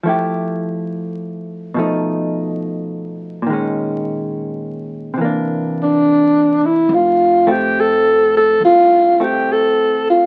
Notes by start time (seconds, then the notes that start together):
0.03 F3 A3 E4
0.09 G4
1.74 B2 F3
1.79 A3 D#4
3.42 A#2
3.47 D#3 G#3
3.53 C#4
5.14 C3 E3
5.21 A#3 D4
5.82 D4
6.66 E4
6.89 F1
6.94 F4
7.47 A3 C4
7.52 G4
7.80 A4
8.37 A4
8.60 C2
8.65 F4
9.20 A3 C4 G4
9.52 A4
10.10 F4